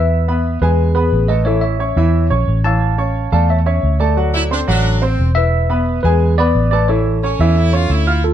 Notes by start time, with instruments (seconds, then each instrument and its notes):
Already playing: fingered electric bass E2, grand piano E4 E5 E6, tine electric piano B4 E5
0.28 grand piano B3 B4 B5
0.61 fingered electric bass E2, grand piano G#3 G#4 G#5, tine electric piano G#4 B4
0.95 grand piano B3 B4 B5, tine electric piano G#4 B4
1.12 fingered electric bass A1
1.28 grand piano A3 A4 A5, tine electric piano B4 D#5
1.45 grand piano E3 E4 E5, tine electric piano A4 C#5
1.61 tine electric piano C#5 E5
1.79 grand piano C#4 C#5 C#6
1.96 fingered electric bass E2, grand piano E3 E4 E5
2.30 fingered electric bass A#1, grand piano C#4 C#5 C#6
2.48 fingered electric bass A1
2.64 grand piano E3 C#5 E6, tine electric piano F5 A5
2.98 grand piano C#4 C#5 C#6
3.32 fingered electric bass E2, grand piano A3 A4 A5, tine electric piano D5 F5
3.50 tine electric piano C#5 E5
3.66 grand piano C#4 C#5 C#6, tine electric piano C#5 E5
3.83 fingered electric bass D2
4.00 grand piano A3 A4 A5, tine electric piano A4 D5
4.16 grand piano F#3 F#4 F#5
4.34 saxophone section E4
4.51 grand piano C4 C5 C6, saxophone section D4
4.67 fingered electric bass A1, grand piano F#3 F#4 F#5, saxophone section D4
5.02 grand piano C4 C5 C6, saxophone section C4
5.19 fingered electric bass E1
5.35 grand piano E4 E5 E6, tine electric piano B4 E5
5.70 grand piano B3 B4 B5
6.03 fingered electric bass E2, grand piano G#3 G#4 G#5, tine electric piano G#4 B4
6.38 grand piano B3 B4 B5, tine electric piano B4 D5
6.55 fingered electric bass A1
6.71 grand piano A3 A4 A5, tine electric piano B4 D5
6.88 grand piano E3 E4 E5, tine electric piano A4 C#5
7.22 saxophone section C#4, grand piano C#4 C#5 C#6
7.39 fingered electric bass E2, grand piano E3 E4 E5
7.56 saxophone section E4
7.73 grand piano C#4 C#5 C#6, saxophone section F4
7.90 fingered electric bass D2, saxophone section E4
8.07 grand piano F4 F5 F6
8.24 tine electric piano F4 A4